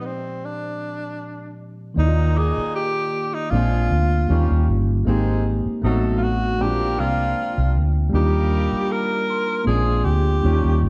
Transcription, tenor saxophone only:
0.00 B3
0.06 C4
0.45 D4
1.99 D#4
2.38 G#4
2.75 G4
3.34 D#4
3.50 F4
6.18 F4
6.23 F#4
6.62 G4
7.00 F4
8.15 G4
8.92 A#4
9.67 G#4
10.05 G4

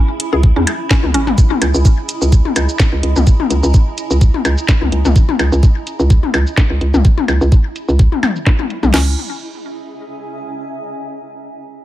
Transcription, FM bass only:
0.33 C#2
0.56 E2
1.04 C#2
1.14 G#1
1.62 C#2
1.74 C#2
2.22 C#2
2.56 C#2
2.93 C#2
3.03 C#2
3.16 C#2
3.50 C#2
3.63 C#2
4.11 C#2
4.45 C#2
4.81 C#2
4.92 C#2
5.05 C#2
5.39 C#2
5.52 C#2
6.00 C#2
6.34 C#2
6.70 C#2
6.81 C#2
6.94 C#2
7.28 C#2
7.41 C#2
7.89 C#2
8.83 B1
8.94 C#2

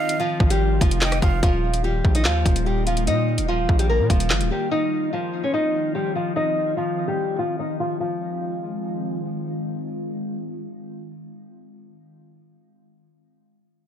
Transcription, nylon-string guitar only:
Already playing: D#4 D#5
0.20 F3 F4
0.50 G3 G4
0.81 F3 F4
1.02 D#4 D#5
1.22 F3 F4
1.43 F3 F4
1.84 G3 G4
2.15 D#4 D#5
2.25 F3 F4
2.66 G3 G4
2.87 F3 F4
3.07 D#4 D#5
3.48 F3 F4
3.79 G3 G4
3.89 A#3 A#4
4.10 F3 F4
4.51 G3 G4
4.71 D#4 D#5
5.13 F3 F4
5.43 C#4 C#5
5.54 D#4 D#5
5.95 G3 G4
6.15 F3 F4
6.36 D#4 D#5
6.77 F3 F4
7.08 G3 G4
7.39 F3 F4
7.59 D#4 D#5
7.80 F3 F4
8.00 F3

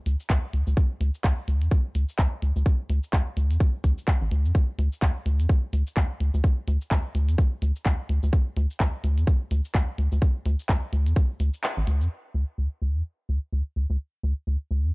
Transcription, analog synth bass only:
0.06 D2
0.30 D2
0.53 D2
0.67 D2
1.01 D2
1.24 D2
1.48 D2
1.62 E2
1.95 D2
2.19 D2
2.42 D2
2.56 D2
2.90 D2
3.13 D2
3.37 D2
3.51 E2
3.84 D2
4.21 A1
4.31 D2
4.45 F2
4.78 D2
5.02 D2
5.26 D2
5.40 E2
5.73 D2
5.97 D2
6.20 D2
6.34 D2
6.68 D2
6.91 D2
7.15 D2
7.28 E2
7.62 D2
7.86 D2
8.09 D2
8.23 D2
8.57 D2
8.80 D2
9.04 D2
9.18 E2
9.51 D2
9.75 D2
9.98 D2
10.12 D2
10.46 D2
10.69 D2
10.93 D2
11.06 E2
11.40 D2
11.77 A1
11.87 D2
12.01 F2
12.34 D2
12.58 D2
12.82 D2
12.95 E2
13.29 D2
13.53 D2
13.76 D2
13.90 D2
14.23 D2
14.47 D2
14.71 D2
14.84 E2

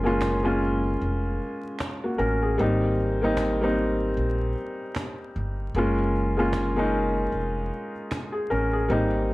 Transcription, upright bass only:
Already playing: F#1
1.01 F1
2.19 A1
2.59 G#1
4.17 A#1
5.36 G1
5.75 F#1
7.32 F1
8.51 A1
8.90 G#1

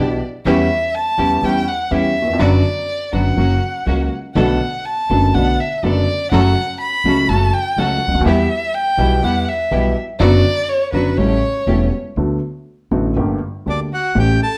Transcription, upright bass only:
Already playing: B1
0.45 E2
1.18 E2
1.42 E2
1.91 E2
2.39 F#1
3.13 F#1
3.37 F#1
3.86 C#2
4.35 B1
5.10 F#1
5.34 B1
5.83 F#1
6.32 F#1
7.04 C#2
7.29 F#1
7.77 C#2
8.07 C#2
8.13 D2
8.20 D#2
8.25 E2
8.98 B1
9.22 E2
9.71 B1
10.20 F#1
10.92 F#1
11.18 A1
11.67 E1
12.16 D2
12.91 A1
13.16 G1
13.66 D2
14.15 A1

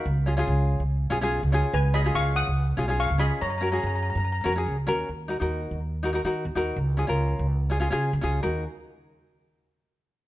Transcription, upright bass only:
0.06 C#2
0.47 C#2
0.80 C#2
1.11 B1
1.43 C#2
1.73 C#2
2.15 C#2
2.47 C#2
2.78 B1
3.10 C#2
3.42 F#2
3.83 F#2
4.15 F#2
4.46 F2
4.66 C#2
4.88 D#2
5.09 D#2
5.41 D#2
5.71 D#2
6.24 D#3
6.45 D#2
6.55 D#2
6.76 C#2
7.08 C#2
7.39 C#2
7.92 C#3
8.13 C#2
8.23 C#2
8.45 D#2

